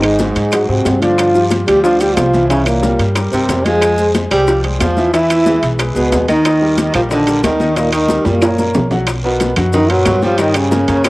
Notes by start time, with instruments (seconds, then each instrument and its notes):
Already playing: upright bass G#1, grand piano D#3 D#4 D#5
0.02 tenor saxophone G#2, trombone G#3, high bongo, high conga, high timbale, claves
0.19 grand piano F#3 F#4 G#4, high bongo, high conga, low timbale, short guiro, maracas
0.36 upright bass G#2, high bongo, high conga, high timbale, short guiro, maracas
0.52 grand piano F#3 F#4 G#4, high bongo, high conga, high timbale, long guiro, claves, maracas
0.68 upright bass G#2, tenor saxophone C3, grand piano F#3 F#4 G#4, trombone C4, high conga
0.85 upright bass G2, high bongo, low bongo, high conga, high timbale, low timbale, short guiro, maracas
1.01 grand piano D3 D4 D5, tenor saxophone F3, trombone F4, high bongo, high conga, high timbale, short guiro, maracas
1.18 high bongo, high conga, high timbale, long guiro, claves, maracas
1.35 grand piano F3 F4 G4, high bongo, high conga, maracas
1.50 high bongo, high conga, high timbale, low timbale, short guiro, maracas
1.67 upright bass D2, grand piano F3 F4 G4, tenor saxophone G3, trombone G4, high bongo, high conga, high timbale, short guiro, claves, maracas
1.83 grand piano D3 D4 D5, tenor saxophone F3, trombone F4, high bongo, high conga, long guiro, maracas
2.00 grand piano F3 F4 G4, tenor saxophone G3, trombone G4, high conga, high timbale, maracas
2.16 upright bass C2, tenor saxophone F3, trombone F4, high bongo, low bongo, high conga, high timbale, low timbale, short guiro, claves, maracas
2.33 grand piano E3 E4 E5, high bongo, high conga, short guiro, maracas
2.49 tenor saxophone C#3, grand piano E3 E4 E5, trombone C#4, high bongo, high conga, high timbale, long guiro, maracas
2.66 tenor saxophone A#2, trombone A#3, high bongo, high conga, high timbale, claves, maracas
2.83 grand piano G3 G4 A#4, high bongo, high conga, low timbale, short guiro, maracas
2.99 upright bass G2, high bongo, high conga, high timbale, short guiro, maracas
3.15 grand piano G3 G4 A#4, high bongo, high conga, high timbale, long guiro, claves, maracas
3.32 upright bass G2, tenor saxophone C3, grand piano G3 G4 A#4, trombone C4, high conga, maracas
3.49 upright bass F2, high bongo, low bongo, high conga, high timbale, low timbale, short guiro, maracas
3.65 grand piano F3 F4 F5, tenor saxophone G#3, trombone G#4, high bongo, high conga, high timbale, short guiro, maracas
3.81 high bongo, high conga, high timbale, long guiro, claves, maracas
3.98 grand piano G#3 G#4 C5, high bongo, high conga, maracas
4.14 high bongo, high conga, high timbale, low timbale, short guiro, maracas
4.31 upright bass C2, tenor saxophone G3, grand piano G#3 G#4 C5, trombone G4, high bongo, high conga, high timbale, short guiro, claves, maracas
4.48 grand piano F3 F4 F5, high bongo, high conga, long guiro, maracas
4.64 grand piano G#3 G#4 C5, high conga, high timbale
4.80 upright bass E2, tenor saxophone F3, trombone F4, high bongo, low bongo, high conga, high timbale, low timbale, short guiro, claves, maracas
4.97 grand piano E3 E4 E5, high bongo, high conga, short guiro, maracas
5.13 tenor saxophone E3, grand piano E3 E4 E5, trombone E4, high bongo, high conga, high timbale, long guiro, maracas
5.30 high bongo, high conga, high timbale, claves, maracas
5.46 grand piano G#3 G#4 B4, high bongo, high conga, low timbale, short guiro, maracas
5.62 upright bass B1, high bongo, high conga, high timbale, short guiro, maracas
5.79 grand piano G#3 G#4 B4, high bongo, high conga, high timbale, long guiro, claves, maracas
5.95 upright bass C#2, tenor saxophone B2, grand piano G#3 G#4 B4, trombone B3, high conga, maracas
6.12 upright bass D#2, high bongo, low bongo, high conga, high timbale, low timbale, short guiro, maracas
6.28 tenor saxophone D#3, grand piano D#3 D#4 D#5, trombone D#4, high bongo, high conga, high timbale, short guiro, maracas
6.45 high bongo, high conga, high timbale, long guiro, claves, maracas
6.61 grand piano G3 G4 A#4, high bongo, high conga
6.78 high bongo, high conga, high timbale, low timbale, short guiro, maracas
6.94 upright bass A#1, tenor saxophone F3, grand piano G3 G4 A#4, trombone F4, high bongo, high conga, high timbale, short guiro, claves, maracas
7.11 tenor saxophone D3, grand piano D#3 D#4 D#5, trombone D4, high bongo, high conga, long guiro, maracas
7.27 grand piano G3 G4 A#4, high conga, high timbale, maracas
7.43 upright bass D#2, tenor saxophone D#3, trombone D#4, high bongo, low bongo, high conga, high timbale, low timbale, short guiro, claves, maracas
7.60 grand piano D#3 D#4 D#5, high bongo, high conga, short guiro, maracas
7.76 tenor saxophone A#2, grand piano D#3 D#4 D#5, trombone A#3, high bongo, high conga, high timbale, long guiro, maracas
7.93 tenor saxophone D#3, trombone D#4, high bongo, high conga, high timbale, claves, maracas
8.09 grand piano G3 G4 A#4, high bongo, high conga, low timbale, short guiro, maracas
8.25 upright bass F#2, tenor saxophone A#2, trombone A#3, high bongo, high conga, high timbale, short guiro, maracas
8.42 grand piano A#3 A#4 C#5, high bongo, high timbale, long guiro, claves, maracas
8.59 grand piano A#3 A#4 C#5, high conga, maracas
8.74 upright bass B1, high bongo, low bongo, low conga, low timbale, short guiro, maracas
8.91 grand piano F#3 F#4 F#5, high bongo, low conga, low timbale, short guiro, maracas
9.07 high bongo, high conga, high timbale, long guiro, claves, maracas
9.24 tenor saxophone B2, grand piano B3 A#4 B4, trombone B3, high bongo, high conga
9.40 high bongo, high conga, high timbale, low timbale, short guiro, maracas
9.56 upright bass F#2, grand piano F#3 F#4 F#5, high bongo, high conga, low conga, high timbale, short guiro, claves, maracas
9.73 tenor saxophone D#3, trombone D#4, high bongo, high conga, low conga, long guiro, maracas
9.90 grand piano A#2 A#4 B4, tenor saxophone F#3, trombone F#4, high conga, high timbale
10.05 upright bass G2, high bongo, low bongo, high conga, high timbale, low timbale, short guiro, claves, maracas
10.22 tenor saxophone F3, grand piano G3 G4 G5, trombone F4, high bongo, high conga, short guiro, maracas
10.38 tenor saxophone D#3, grand piano G3 G4 G5, trombone D#4, high bongo, high conga, high timbale, long guiro, maracas
10.54 tenor saxophone C#3, trombone C#4, high bongo, high conga, high timbale, claves, maracas
10.71 grand piano A#3 A#4 C#5, high bongo, high conga, low timbale, short guiro, maracas
10.88 upright bass F#2, grand piano A#3 A#4 C#5, high bongo, high conga, high timbale, short guiro, maracas
11.04 tenor saxophone C3, trombone C4, high bongo, high conga, high timbale, long guiro, claves, maracas